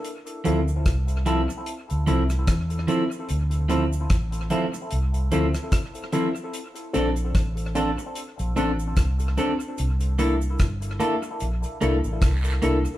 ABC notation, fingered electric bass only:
X:1
M:4/4
L:1/16
Q:"Swing 16ths" 1/4=74
K:Dm
V:1 name="Fingered electric bass" clef=bass
z2 D,,2 C,,3 z2 D,, C,,2 E,,2 z2 | D,,4 A,,,2 z2 C,,2 D,, z4 z | z2 B,,,2 A,,,3 z2 B,,, A,,,2 C,,2 z2 | C,,4 G,,,2 z2 B,,, z C,, A,,, C,,2 C,, z |]